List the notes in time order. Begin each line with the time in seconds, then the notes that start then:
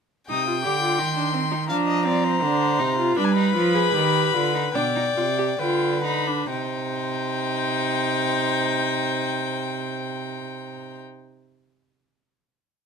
0.29 C3 D#4 G5 D#6
0.47 F4
0.63 D3 G4 D6
0.81 F4
0.98 D#3 D#4 C6
1.16 D4
1.33 C4
1.51 D#4
1.68 F3 D4 F5 A#5
1.87 D#5
2.05 C4 D5
2.24 C5
2.42 D3 D4
2.79 C3 D#4
2.98 F4
3.17 G3 D4 B4 B5
3.25 G#5
3.32 B5
3.36 D#4
3.55 F3 F4
3.74 G#4
3.94 D#3 G4
4.34 D3 F4
4.54 D#4
4.75 B2 D4 D5 G5
4.96 D#4
5.16 C3 F4
5.38 G4
5.59 D3 F4 B4 G5
6.04 D#4 B5
6.27 D4
6.50 C3 D#4 C5 G5